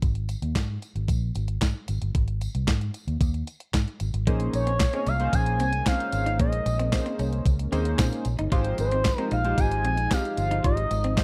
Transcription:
0.02 G#1, kick, closed hi-hat, tambourine
0.15 closed hi-hat
0.29 closed hi-hat, tambourine
0.42 D#2, closed hi-hat
0.55 G#2, kick, snare, clap, closed hi-hat, tambourine
0.82 closed hi-hat, tambourine
0.95 G#1, closed hi-hat
1.08 A#1, kick, closed hi-hat, tambourine
1.35 G#1, closed hi-hat, tambourine
1.48 closed hi-hat
1.61 G#2, kick, snare, clap, closed hi-hat, tambourine
1.88 G#1, closed hi-hat, tambourine
2.02 G1, closed hi-hat
2.15 G#1, kick, closed hi-hat
2.28 closed hi-hat
2.41 closed hi-hat, tambourine
2.55 C2, closed hi-hat
2.67 G#2, kick, snare, clap, closed hi-hat, tambourine
2.81 closed hi-hat
2.94 closed hi-hat, tambourine
3.07 D#2, closed hi-hat
3.21 D#2, kick, closed hi-hat, tambourine
3.34 closed hi-hat
3.47 closed hi-hat, tambourine
3.60 closed hi-hat
3.73 G#2, kick, snare, clap, closed hi-hat, tambourine
3.88 closed hi-hat
4.00 G#1, closed hi-hat, tambourine
4.14 G#1, closed hi-hat
4.27 A#1 G#3 A#3 C#4 D#4 G#4 C5, kick, closed hi-hat
4.40 closed hi-hat
4.53 A#1 C#5, muted clean electric guitar stroke, closed hi-hat, tambourine
4.67 C4, closed hi-hat
4.80 muted clean electric guitar stroke, kick, snare, clap, closed hi-hat, tambourine
4.93 A#3 C4 C#4 D#4 G#4 C#5, closed hi-hat
5.06 C2 C#4 F5, closed hi-hat, tambourine
5.20 A#3 C#4 D#4 G#4 C5, closed hi-hat
5.33 A#1 G#5, kick, closed hi-hat, tambourine
5.46 closed hi-hat
5.59 C2 C4 G#5, closed hi-hat, tambourine
5.73 closed hi-hat
5.86 A#3 C4 D#4 G#4 C5 F5, kick, snare, clap, closed hi-hat, tambourine
5.92 C#4
6.00 closed hi-hat
6.12 G#1 F5, muted clean electric guitar stroke, closed hi-hat, tambourine
6.26 D#4, closed hi-hat
6.39 A#1 A#3 D#5, kick, closed hi-hat
6.53 closed hi-hat
6.66 A#1, muted clean electric guitar stroke, closed hi-hat, tambourine
6.79 C4, closed hi-hat
6.92 A#3 C4 D#4 G#4 C5, muted clean electric guitar stroke, kick, snare, clap, closed hi-hat, tambourine
6.99 C#4
7.06 C4, closed hi-hat
7.19 C2 C#4, closed hi-hat, tambourine
7.33 closed hi-hat
7.46 C#2, kick, closed hi-hat, tambourine
7.59 closed hi-hat
7.72 D#2 A#3 C4 C#4 D#4 G#4 C5, closed hi-hat, tambourine
7.85 closed hi-hat
7.98 A#2 C4, kick, snare, clap, closed hi-hat, tambourine
8.13 closed hi-hat
8.25 A#1, muted clean electric guitar stroke, closed hi-hat, tambourine
8.39 G1 D#4, closed hi-hat
8.52 G#1 F3 G#3 D#4 F4 G4 C5, kick, closed hi-hat, tambourine
8.64 closed hi-hat
8.78 G#1 C5, muted clean electric guitar stroke, closed hi-hat, tambourine
8.91 C4, closed hi-hat
9.05 muted clean electric guitar stroke, kick, snare, clap, closed hi-hat, tambourine
9.18 G#3 C4 D#4 F4 G4 C5, closed hi-hat
9.31 A#1 D#4 F5, closed hi-hat, tambourine
9.44 G#3 D#4 F4 G4 C5, closed hi-hat
9.58 G#1 G#5, kick, closed hi-hat, tambourine
9.71 closed hi-hat
9.85 A#1 C4 G#5, closed hi-hat
9.97 closed hi-hat
10.11 G#3 C4 D#4 F4 G4 C5 F5, kick, snare, clap, closed hi-hat, tambourine
10.25 closed hi-hat
10.37 G1 F5, muted clean electric guitar stroke, closed hi-hat, tambourine
10.51 D#4, closed hi-hat
10.64 G#1 F4 D#5, kick, closed hi-hat
10.77 closed hi-hat
10.91 G#1, muted clean electric guitar stroke, closed hi-hat, tambourine
11.04 C4, closed hi-hat
11.17 G#3 D#4 F4 G4 C5, muted clean electric guitar stroke, kick, snare, clap, closed hi-hat, tambourine

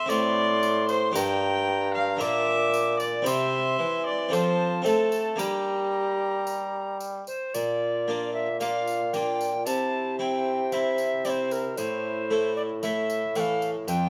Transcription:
Already playing: E5
0.06 C4 E4 A4 D5 C6, tambourine
0.10 A2
0.63 tambourine
0.89 C5, tambourine
1.12 G2 D4 G4 A#4 G5, tambourine
1.16 A#5
1.94 F5
2.17 A#2 D4 F4 A#4 E5 D6, tambourine
2.21 A#2
2.74 tambourine
3.00 D5, tambourine
3.22 C4 E4 G4, tambourine
3.26 C3 E5 C6
3.79 E3
4.06 D5
4.29 F3 C4 F4 A4 A5
4.33 C5, tambourine
4.82 A3 C4 F4 A4 A5, tambourine
5.12 tambourine
5.36 G3 A#3 D4 G4 A#5, tambourine
6.47 tambourine
7.00 tambourine
7.27 C5, tambourine
7.54 A#2 F4 D5, tambourine
8.08 A#3 D4 F4
8.34 E5
8.60 A#3 D4 F4 F5, tambourine
8.87 tambourine
9.13 A#3 D4 F4 G5, tambourine
9.41 tambourine
9.66 C3 E4 A5, tambourine
10.19 C4 E4 G5
10.72 C4 E4 E5, tambourine
10.98 tambourine
11.25 C4 E4 D5, tambourine
11.30 C5
11.51 A#4, tambourine
11.77 A2 E4 C5, tambourine
12.30 A3 E4 A4
12.56 D5
12.83 A3 E4 A4 E5, tambourine
13.10 tambourine
13.35 E3 A3 A4 G5, tambourine
13.40 F5
13.62 tambourine
13.87 F2 F4 G5, tambourine

